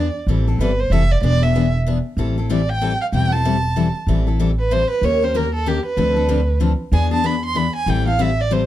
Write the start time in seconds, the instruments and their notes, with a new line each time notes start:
Already playing: violin D5
0.27 upright bass A1, steel-string acoustic guitar E3 G3 C4 E4 A4
0.48 steel-string acoustic guitar C4 E4 A4
0.58 upright bass G1, steel-string acoustic guitar E3 G3 C4 E4 A4, violin B4
0.80 violin C5
0.90 upright bass F1, steel-string acoustic guitar E3 G3 C4 E4 A4, violin E5
1.11 violin D5
1.22 upright bass E1, steel-string acoustic guitar E3 B3 D4 G#4, violin D5
1.42 steel-string acoustic guitar B3 D4 G#4, violin E5
1.55 steel-string acoustic guitar E3 B3 D4 G#4
1.86 steel-string acoustic guitar E3 B3 D4 G#4
2.17 upright bass A1, steel-string acoustic guitar E3 G3 C4 E4 A4
2.38 steel-string acoustic guitar C4 E4 A4
2.50 steel-string acoustic guitar E3 G3 C4 E4 A4, violin D5
2.69 violin G5
2.81 steel-string acoustic guitar E3 G3 C4 E4 A4
3.01 violin F5
3.12 upright bass E1, steel-string acoustic guitar E3 G3 C4 E4 A4, violin G5
3.32 steel-string acoustic guitar C4 E4 A4, violin A5
3.45 steel-string acoustic guitar E3 G3 C4 E4 A4
3.76 steel-string acoustic guitar E3 G3 C4 E4 A4
4.07 upright bass A1, steel-string acoustic guitar E3 G3 C4 E4 A4
4.27 steel-string acoustic guitar C4 E4 A4
4.39 steel-string acoustic guitar E3 G3 C4 E4 A4
4.59 violin B4
4.71 steel-string acoustic guitar E3 G3 C4 E4 A4, violin C5
4.90 violin B4
5.01 upright bass D#2, steel-string acoustic guitar D#3 A#3 C#4 G4 A#4, violin C#5
5.22 steel-string acoustic guitar C#4 G4 A#4, violin C5
5.34 steel-string acoustic guitar D#3 A#3 C#4 G4 A#4, violin A#4
5.54 violin A4
5.66 steel-string acoustic guitar D#3 A#3 C#4 G4 A#4, violin G4
5.86 violin B4
5.97 upright bass D2, steel-string acoustic guitar D3 F3 C4 D4 A4
6.17 steel-string acoustic guitar C4 D4 A4
6.29 steel-string acoustic guitar D3 F3 C4 D4 A4
6.60 steel-string acoustic guitar D3 F3 C4 D4 A4
6.92 upright bass E2, steel-string acoustic guitar E3 B3 D4 G#4, violin G#5
7.11 steel-string acoustic guitar B3 D4 G#4, violin A5
7.24 steel-string acoustic guitar E3 B3 D4 G#4, violin B5
7.45 violin C6
7.55 steel-string acoustic guitar E3 B3 D4 G#4, violin B5
7.76 violin G#5
7.86 upright bass A1, steel-string acoustic guitar E3 G3 C4 E4 A4, violin G5
8.06 steel-string acoustic guitar C4 E4 A4, violin F5
8.19 steel-string acoustic guitar E3 G3 C4 E4 A4, violin E5
8.41 violin D5
8.51 steel-string acoustic guitar E3 G3 C4 E4 A4, violin C5